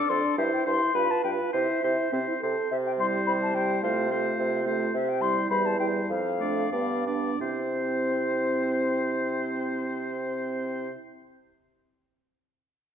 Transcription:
Already playing: clarinet D5, flute D6
0.09 bassoon F2, french horn D4, oboe A4, flute C6
0.38 bassoon G2, french horn E4, clarinet C5, oboe C5, flute E5
0.53 flute G5
0.66 bassoon G2, french horn E4, oboe C5, flute C6
0.94 bassoon G2, french horn F4, oboe B4, clarinet B4, flute B5
1.11 flute A5
1.24 bassoon G2, french horn F4, oboe B4, flute G5
1.53 bassoon C3, french horn E4, oboe C5, clarinet C5, flute E5
1.83 bassoon C3, french horn E4, oboe C5
2.13 bassoon C3, french horn C4, oboe C5
2.28 french horn E4
2.42 bassoon C3, french horn A4, oboe C5
2.71 bassoon C3, flute E5
2.86 flute G5
2.99 french horn G3, clarinet E4, oboe C5, flute C6
3.27 bassoon C3, flute B5
3.42 flute A5
3.55 french horn G3, clarinet E4, oboe C5, flute G5
3.83 bassoon C3, french horn A3, clarinet F4, oboe C5, flute F5
4.11 french horn A3, clarinet F4, oboe C5
4.39 bassoon C3
4.66 french horn A3, clarinet F4, oboe C5
4.94 bassoon C3, flute E5
5.09 flute G5
5.21 french horn G3, clarinet E4, oboe C5, flute C6
5.50 bassoon E2, french horn G3, clarinet E4, oboe C5, flute B5
5.66 flute A5
5.79 french horn G3, clarinet E4, oboe C5, flute G5
6.09 bassoon F2, flute F5
6.40 french horn A3, clarinet D4, oboe D5
6.72 bassoon G2, french horn B3, clarinet D4, oboe D5
7.06 french horn B3, clarinet D4, oboe D5
7.40 bassoon C3, french horn C4, clarinet E4, oboe C5, flute C5

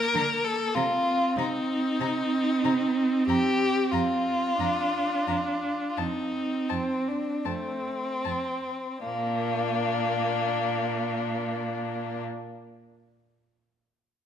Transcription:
Already playing: viola A#3, violin A#4
0.15 cello D3, violin A#5
0.45 violin A4
0.75 cello C3, viola C4, violin F4 A#5
1.36 cello C3, violin D#4 A#5
2.00 cello C3, violin A#5
2.64 cello C3, violin A#5
3.27 cello F2, violin G4 A#5
3.92 cello F2, violin F4 A#5
4.59 cello F2, viola D4, violin A#5
5.27 cello F2, violin A#5
5.89 violin F4
5.97 cello F2, viola C4, violin D#4 A5
6.69 cello F2, violin C4 A5
7.08 violin D4
7.45 cello F2, viola A3, violin C4 A5
8.24 cello F2, violin A5
9.03 cello A#2, violin A#3 D4, viola A#3

